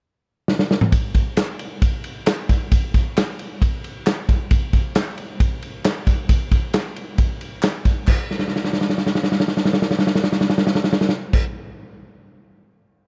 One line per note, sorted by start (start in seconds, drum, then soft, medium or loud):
0.48 snare medium
0.59 snare medium
0.71 snare medium
0.81 mid tom medium
0.92 kick loud
0.92 ride loud
1.14 kick medium
1.14 ride medium
1.37 snare loud
1.37 clap medium
1.37 ride loud
1.59 ride medium
1.82 kick loud
1.82 ride loud
2.04 ride medium
2.26 snare loud
2.26 clap medium
2.26 ride medium
2.49 kick medium
2.49 ride medium
2.71 kick loud
2.71 ride loud
2.94 kick medium
2.94 ride medium
3.17 snare loud
3.17 clap medium
3.17 ride medium
3.39 ride medium
3.62 kick loud
3.62 ride medium
3.84 ride medium
4.06 snare loud
4.06 clap loud
4.06 ride medium
4.29 kick medium
4.29 ride medium
4.51 kick loud
4.51 ride medium
4.73 kick medium
4.73 ride medium
4.95 snare loud
4.95 clap medium
4.95 ride medium
5.18 ride medium
5.40 kick loud
5.40 ride medium
5.62 ride medium
5.84 snare loud
5.84 clap medium
5.84 ride loud
6.07 kick medium
6.07 ride medium
6.29 kick loud
6.29 ride loud
6.51 kick medium
6.51 ride medium
6.73 snare loud
6.73 clap medium
6.73 ride medium
6.96 ride medium
7.18 kick loud
7.18 ride medium
7.41 ride medium
7.63 snare loud
7.63 clap medium
7.63 ride medium
7.85 kick medium
7.85 ride medium
8.07 kick loud
8.07 clap medium
8.07 crash loud
8.31 snare soft
8.39 snare medium
8.48 snare soft
8.56 snare soft
8.64 snare medium
8.73 snare medium
8.81 snare medium
8.90 snare medium
8.98 snare medium
9.06 snare medium
9.15 snare medium
9.23 snare medium
9.32 snare medium
9.40 snare medium
9.48 snare medium
9.57 snare medium
9.65 snare medium
9.73 snare medium
9.82 snare medium
9.91 snare medium
9.99 snare medium
10.07 snare medium
10.15 snare medium
10.24 snare medium
10.32 snare medium
10.41 snare medium
10.50 snare medium
10.58 snare medium
10.67 snare medium
10.75 snare medium
10.84 snare medium
10.93 snare medium
11.01 snare medium
11.09 snare medium
11.33 kick loud
11.33 crash loud